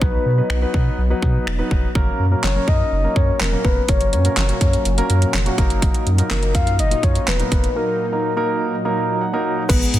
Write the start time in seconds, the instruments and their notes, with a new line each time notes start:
Already playing: supersaw synth F#3 B3 D#4
0.01 sub bass B1, grand piano F#3 B3 D#4 B4, soft synth lead B4, kick
0.26 sub bass B2
0.38 grand piano F#3 B3 D#4 B4
0.50 sub bass B1, finger snap
0.62 grand piano F#3 B3 D#4 B4
0.74 sub bass B2, kick
0.98 sub bass B1
1.10 grand piano F#3 B3 D#4 B4
1.22 sub bass B2, kick
1.47 sub bass E1, finger snap
1.59 grand piano F#3 B3 D#4 B4
1.71 sub bass F1, kick
1.95 sub bass F#1, supersaw synth A#2 C#4, grand piano F#3 A#3 C#4 A#4, kick
2.19 sub bass F#2
2.31 grand piano F#3 A#3 C#4 A#4
2.43 sub bass F#1, soft synth lead C#5, snare, clap
2.55 grand piano F#3 A#3 C#4 A#4
2.68 sub bass F#2, soft synth lead D#5, kick
2.92 sub bass F#1, soft synth lead D#5
3.04 grand piano F#3 A#3 C#4 A#4
3.16 sub bass F#2, soft synth lead C#5, kick
3.40 sub bass E1, soft synth lead A#4, snare, clap
3.53 grand piano F#3 A#3 C#4 A#4
3.65 sub bass F1, soft synth lead B4, kick
3.88 sub bass F#1, grand piano F#3 A#3 C#4 A#4, soft synth lead C#5, kick, closed hi-hat
4.01 closed hi-hat
4.13 sub bass F#2, soft synth lead C#5, closed hi-hat
4.25 grand piano F#3 A#3 C#4 A#4, closed hi-hat
4.37 sub bass F#1, snare, clap, closed hi-hat
4.49 grand piano F#3 A#3 C#4 A#4, closed hi-hat
4.61 sub bass F#2, kick, closed hi-hat
4.73 closed hi-hat
4.85 sub bass F#1, closed hi-hat
4.98 grand piano F#3 A#3 C#4 A#4, closed hi-hat
5.10 sub bass F#2, closed hi-hat
5.22 closed hi-hat
5.34 sub bass F1, snare, clap, closed hi-hat
5.46 grand piano F#3 A#3 C#4 F#4, closed hi-hat
5.58 sub bass F#1, grand piano F#3 A#3 D#4 A#4, supersaw synth D#4, kick, closed hi-hat
5.70 closed hi-hat
5.82 kick, closed hi-hat
5.94 closed hi-hat
6.06 sub bass F#2, closed hi-hat
6.18 grand piano F#3 A#3 D#4 A#4, closed hi-hat
6.31 sub bass F#1, soft synth lead A#4, snare, clap, closed hi-hat
6.42 grand piano F#3 A#3 D#4 A#4, closed hi-hat
6.55 sub bass F#2, soft synth lead F5, kick, closed hi-hat
6.67 closed hi-hat
6.79 sub bass F#1, soft synth lead D#5, closed hi-hat
6.91 grand piano F#3 A#3 D#4 F4, closed hi-hat
7.03 sub bass F#2, soft synth lead C#5, kick, closed hi-hat
7.15 closed hi-hat
7.27 sub bass E1, soft synth lead B4, snare, clap, closed hi-hat
7.39 grand piano F#3 A#3 D#4 A#4, closed hi-hat
7.52 sub bass F1, kick, closed hi-hat
7.64 closed hi-hat
7.76 grand piano F#3 A#3 D#4 A#4, soft synth lead A#4
8.12 grand piano F#3 A#3 D#4 A#4
8.36 grand piano F#3 A#3 D#4 A#4
8.85 grand piano F#3 A#3 D#4 A#4
8.97 grand piano A#5
9.21 grand piano F#5
9.33 grand piano F#3 A#3 D#4 A#4
9.69 sub bass G#1, supersaw synth G#3 B3 D#4, synth pluck B3 B4, grand piano G#4, kick, closed hi-hat, crash, shaker
9.82 shaker
9.94 sub bass G#2, closed hi-hat, shaker